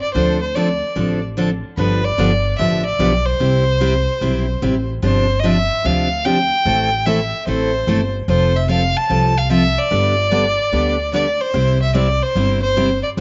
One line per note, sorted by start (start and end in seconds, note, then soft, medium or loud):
0.01 0.13 D5 medium
0.14 0.80 D2 medium
0.14 0.37 D3 medium
0.14 0.37 F3 medium
0.14 0.38 C4 medium
0.14 0.38 D4 medium
0.14 0.38 A4 medium
0.14 0.39 C5 medium
0.41 0.56 C5 medium
0.55 0.67 D3 medium
0.55 0.68 F3 medium
0.55 0.68 C4 medium
0.55 0.68 D4 medium
0.55 0.68 A4 medium
0.55 1.23 D5 medium
0.96 1.61 A1 medium
0.96 1.18 D3 medium
0.96 1.19 F3 medium
0.96 1.19 C4 medium
0.96 1.19 D4 medium
0.96 1.19 A4 medium
1.37 1.49 D3 medium
1.37 1.49 F3 medium
1.37 1.49 C4 medium
1.37 1.49 D4 medium
1.37 1.49 A4 medium
1.77 2.10 G1 loud
1.77 2.00 D3 medium
1.77 2.01 F3 medium
1.77 2.01 B3 medium
1.77 2.01 D4 medium
1.77 2.01 G4 medium
1.77 2.06 B4 medium
2.04 2.57 D5 medium
2.18 2.53 G1 medium
2.18 2.30 D3 medium
2.18 2.30 F3 medium
2.18 2.30 B3 medium
2.18 2.31 D4 medium
2.18 2.31 G4 medium
2.58 2.94 A1 medium
2.58 2.81 D3 medium
2.58 2.82 F3 medium
2.58 2.82 B3 medium
2.58 2.82 D4 medium
2.58 2.82 G4 medium
2.58 2.84 E5 medium
2.85 3.27 D5 medium
2.99 3.34 B1 medium
2.99 3.12 D3 medium
2.99 3.12 F3 medium
2.99 3.12 B3 medium
2.99 3.12 D4 medium
2.99 3.12 G4 medium
3.25 4.89 C5 loud
3.40 4.05 C2 medium
3.40 3.63 C3 medium
3.40 3.63 G3 medium
3.40 3.63 C4 medium
3.40 3.63 E4 medium
3.40 3.63 G4 medium
3.80 3.93 C3 medium
3.80 3.93 G3 medium
3.80 3.93 C4 medium
3.80 3.93 E4 medium
3.80 3.93 G4 medium
4.21 4.56 B1 medium
4.21 4.44 C3 medium
4.21 4.44 G3 medium
4.21 4.44 C4 medium
4.21 4.45 E4 medium
4.21 4.45 G4 medium
4.62 4.97 A1 medium
4.62 4.74 C3 medium
4.62 4.74 G3 medium
4.62 4.74 C4 medium
4.62 4.75 E4 medium
4.62 4.75 G4 medium
5.02 5.68 G1 medium
5.02 5.25 C3 medium
5.02 5.25 F3 medium
5.02 5.26 C4 medium
5.02 5.26 D4 medium
5.02 5.26 G4 medium
5.02 5.41 C5 medium
5.40 5.56 C3 medium
5.40 5.46 D#5 medium
5.44 5.56 F3 medium
5.44 5.56 C4 medium
5.44 5.56 D4 medium
5.44 5.56 G4 medium
5.44 5.87 E5 medium
5.84 6.50 D2 medium
5.84 6.07 C3 medium
5.84 6.07 F3 medium
5.84 6.08 C4 medium
5.84 6.08 D4 medium
5.84 6.08 G4 medium
5.84 6.27 F5 medium
6.25 6.37 C3 medium
6.25 6.37 F3 medium
6.25 6.37 C4 medium
6.25 6.37 D4 medium
6.25 6.38 G4 medium
6.25 7.08 G5 loud
6.65 7.31 A1 medium
6.65 6.88 E3 medium
6.65 6.88 A3 medium
6.65 6.89 C4 medium
6.65 6.89 E4 medium
6.65 6.89 A4 medium
7.06 7.18 E3 medium
7.06 7.18 A3 medium
7.06 7.19 C4 medium
7.06 7.19 E4 medium
7.06 7.19 A4 medium
7.06 7.47 E5 medium
7.47 7.82 A1 medium
7.47 7.70 E3 medium
7.47 7.70 A3 medium
7.47 7.70 C4 medium
7.47 7.70 E4 medium
7.47 7.70 A4 medium
7.47 8.11 C5 medium
7.87 8.22 G1 medium
7.87 8.00 E3 medium
7.87 8.00 A3 medium
7.87 8.00 C4 medium
7.87 8.00 E4 medium
7.87 8.00 A4 medium
8.28 8.93 F1 medium
8.28 8.51 F3 medium
8.28 8.51 C4 medium
8.28 8.51 F4 medium
8.28 8.52 A4 medium
8.28 8.57 C5 medium
8.56 8.69 E5 medium
8.69 8.81 F3 medium
8.69 8.81 C4 medium
8.69 8.81 F4 medium
8.69 8.81 A4 medium
8.69 8.98 F5 loud
8.97 9.39 A5 loud
9.10 9.75 C2 medium
9.10 9.32 F3 medium
9.10 9.33 C4 medium
9.10 9.33 F4 medium
9.10 9.33 A4 medium
9.38 9.51 F5 medium
9.50 9.62 F3 medium
9.50 9.62 C4 medium
9.50 9.63 F4 medium
9.50 9.63 A4 medium
9.50 9.80 E5 loud
9.78 11.13 D5 loud
9.90 10.56 G1 medium
9.90 10.14 D3 medium
9.90 10.14 G3 medium
9.90 10.14 B3 medium
9.90 10.14 D4 medium
9.90 10.14 G4 medium
10.31 10.44 D3 medium
10.31 10.44 G3 medium
10.31 10.44 B3 medium
10.31 10.44 D4 medium
10.31 10.44 G4 medium
10.72 11.38 D2 medium
10.72 10.95 D3 medium
10.72 10.95 G3 medium
10.72 10.95 B3 medium
10.72 10.96 D4 medium
10.72 10.96 G4 medium
11.13 11.25 D3 medium
11.13 11.26 G3 medium
11.13 11.26 B3 medium
11.13 11.26 D4 medium
11.13 11.26 G4 medium
11.13 11.42 D5 medium
11.41 11.81 C5 medium
11.54 12.19 C2 medium
11.54 11.77 C3 medium
11.54 11.77 G3 medium
11.54 11.77 C4 medium
11.54 11.77 E4 medium
11.54 11.77 G4 medium
11.82 11.94 E5 medium
11.94 12.07 C3 medium
11.94 12.07 G3 medium
11.94 12.07 C4 medium
11.94 12.07 E4 medium
11.94 12.07 G4 medium
11.94 12.24 D5 medium
12.22 12.62 C5 medium
12.35 13.01 G1 medium
12.35 12.59 C3 medium
12.35 12.59 G3 medium
12.35 12.59 C4 medium
12.35 12.59 E4 medium
12.35 12.59 G4 medium
12.62 13.01 C5 medium
12.77 12.89 C3 medium
12.77 12.89 G3 medium
12.77 12.89 C4 medium
12.77 12.89 E4 medium
12.77 12.89 G4 medium
13.03 13.09 D5 medium
13.17 13.20 D2 medium